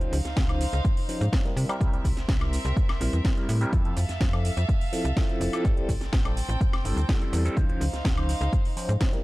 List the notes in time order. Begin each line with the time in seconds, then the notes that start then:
Already playing: D#4 C5 F5
0.00 C#2 F3 C#4 D#4 C5, closed hi-hat
0.12 C#2, open hi-hat, shaker
0.25 snare, closed hi-hat, shaker
0.37 C#2, kick, snare, closed hi-hat, shaker
0.48 F3 C#4 D#4 C5, closed hi-hat, high woodblock
0.61 open hi-hat, shaker
0.73 C#2, closed hi-hat, shaker
0.85 kick, closed hi-hat, shaker
0.97 open hi-hat
1.09 F3 C#4 D#4 C5, open hi-hat, shaker
1.21 G#2, closed hi-hat, shaker
1.32 F3 C#4 D#4 C5, kick, snare, closed hi-hat, shaker
1.45 G3 C4 E4 A#4, closed hi-hat
1.56 C3 C4 A#4 E5, open hi-hat, shaker
1.69 G3 C4 E4 A#4, closed hi-hat, high woodblock, shaker
1.80 C2 G3 C4 E4 A#4, kick, closed hi-hat, shaker
1.93 G3 C4 E4 A#4, closed hi-hat
2.05 C2, kick, open hi-hat, shaker
2.17 C2, snare, closed hi-hat, shaker
2.29 C2, kick, snare, closed hi-hat, shaker
2.40 G3 C4 E4 A#4, closed hi-hat, high woodblock
2.53 open hi-hat, shaker
2.65 C2, closed hi-hat, shaker
2.77 kick, closed hi-hat, shaker
2.89 A#1, snare, closed hi-hat, high woodblock
3.00 A#1 G3 C4 E4 A#4, open hi-hat, shaker
3.13 E2, closed hi-hat, shaker
3.24 G3 C4 E4 A#4, kick, snare, closed hi-hat, shaker
3.37 G3 C4 E4 A#4, closed hi-hat
3.49 A2, open hi-hat, shaker
3.61 G3 C4 E4 A#4, closed hi-hat, shaker
3.73 F2 A4 E5 F5, kick, closed hi-hat, shaker
3.85 F2 F3 C4 E4 A4, closed hi-hat
3.97 F2, open hi-hat, shaker
4.09 F2, snare, closed hi-hat, shaker
4.21 F2, kick, snare, closed hi-hat, shaker
4.33 F3 C4 E4 A4, closed hi-hat, high woodblock
4.45 open hi-hat, shaker
4.57 F2, closed hi-hat, shaker
4.69 kick, closed hi-hat, shaker
4.81 open hi-hat
4.92 F3 C4 E4 A4, open hi-hat, shaker
5.05 C2, closed hi-hat, shaker
5.16 F3 C4 E4 A4, kick, snare, closed hi-hat, shaker
5.29 F3 C4 E4 A4, closed hi-hat
5.41 F1, open hi-hat, shaker
5.53 F3 C4 E4 A4, closed hi-hat, high woodblock, shaker
5.64 A1 G3 C4 E4 A4 G5, kick, closed hi-hat, shaker
5.76 A1 G3 C4 E4 A4, closed hi-hat
5.89 A1, kick, open hi-hat, shaker
6.01 A1, snare, closed hi-hat, shaker
6.13 A1, kick, snare, closed hi-hat, shaker
6.25 G3 C4 E4 A4, closed hi-hat, high woodblock
6.37 open hi-hat, shaker
6.49 A1, closed hi-hat, shaker
6.61 kick, closed hi-hat, shaker
6.73 G1, snare, closed hi-hat, high woodblock
6.84 G1 G3 C4 E4 A4, open hi-hat, shaker
6.97 D2, closed hi-hat, shaker
7.08 G3 C4 E4 A4, kick, snare, closed hi-hat, shaker
7.21 G3 C4 E4 A4, closed hi-hat
7.33 E2, open hi-hat, shaker
7.45 G3 C4 E4 A4, closed hi-hat, shaker
7.56 C#2 F3 C#4 D#4 C5 F5, kick, closed hi-hat, shaker
7.68 C#2 F3 C#4 D#4 C5, closed hi-hat
7.81 C#2, open hi-hat, shaker
7.93 C#2, snare, closed hi-hat, shaker
8.05 C#2, kick, snare, closed hi-hat, shaker
8.17 F3 C#4 D#4 C5, closed hi-hat, high woodblock
8.29 open hi-hat, shaker
8.41 C#2, closed hi-hat, shaker
8.53 kick, closed hi-hat, shaker
8.65 open hi-hat
8.76 F3 C#4 D#4 C5, open hi-hat, shaker
8.89 G#2, closed hi-hat, shaker
9.00 F3 C#4 D#4 C5, kick, snare, closed hi-hat, shaker
9.13 G3 C4 E4 A#4, closed hi-hat